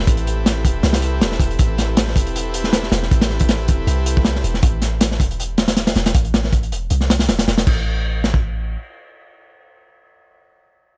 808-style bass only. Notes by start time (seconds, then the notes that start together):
0.07 A1
0.65 E1
0.83 C2
1.21 E1
1.40 E1
1.59 A1
2.16 E1
2.92 E1
3.11 A1
3.69 E1
3.87 C2
4.44 E1
4.63 A1
5.20 E1
5.96 E1
6.15 A1
6.72 E1
6.91 C2
7.29 E1
7.48 E1
7.67 A1